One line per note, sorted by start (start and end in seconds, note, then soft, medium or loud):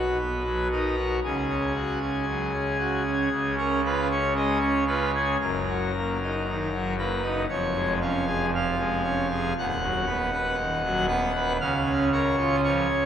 0.00 1.19 B1 medium
0.00 1.20 B2 medium
0.00 0.18 F#4 medium
0.00 0.68 B4 loud
0.19 0.43 B3 soft
0.45 0.69 F#3 soft
0.72 0.96 D#4 soft
0.72 1.17 A#4 medium
0.97 1.20 F#4 soft
1.24 3.29 C#2 medium
1.24 3.29 C#3 medium
1.24 3.55 G#4 medium
1.49 1.73 C#4 soft
1.75 1.99 F#4 soft
2.01 2.25 C#4 soft
2.29 2.52 F#3 soft
2.54 2.77 C#4 soft
2.79 3.03 F#4 soft
3.06 3.29 C#4 soft
3.31 5.36 C#2 medium
3.31 5.36 C#3 medium
3.58 3.81 C#4 soft
3.58 3.81 A#4 medium
3.86 4.09 F4 soft
3.86 4.08 B4 medium
4.11 4.34 C#4 soft
4.11 4.33 C#5 medium
4.36 4.60 G#3 soft
4.36 4.58 D#5 medium
4.61 4.85 C#4 soft
4.61 4.84 C#5 medium
4.87 5.12 F4 soft
4.87 5.10 B4 medium
5.15 5.37 C#4 soft
5.15 5.37 G#4 medium
5.41 7.46 F#1 medium
5.41 7.45 F#2 medium
5.41 6.94 A#4 medium
5.69 5.91 F#3 soft
5.96 6.18 A#3 soft
6.22 6.44 D#4 soft
6.47 6.70 D#3 soft
6.73 6.96 F#3 soft
6.99 7.22 A#3 soft
6.99 7.42 B4 medium
7.23 7.45 D#4 soft
7.49 9.52 F1 medium
7.49 9.52 F2 medium
7.49 7.94 C#5 medium
7.75 7.99 G#3 soft
8.01 8.25 C#4 soft
8.01 8.46 F5 medium
8.27 8.50 G#4 soft
8.54 8.77 F3 soft
8.54 9.54 F5 loud
8.79 9.02 G#3 soft
9.03 9.27 C#4 medium
9.31 9.53 G#4 soft
9.58 11.59 D#1 medium
9.58 11.58 D#2 medium
9.58 11.06 F#5 loud
9.83 10.05 F#3 soft
10.07 10.30 B3 medium
10.33 10.56 B4 medium
10.59 10.82 D#3 medium
10.83 11.07 F#3 medium
11.07 11.32 B3 medium
11.07 11.52 F#5 loud
11.35 11.57 B4 medium
11.61 13.05 C#2 medium
11.61 13.05 C#3 medium
11.61 12.04 F5 loud
11.86 12.09 C#4 medium
12.12 12.36 A#4 medium
12.12 12.56 C#5 loud
12.38 12.61 F4 medium
12.64 12.87 F3 medium
12.64 13.05 C#5 loud
12.89 13.05 C#4 medium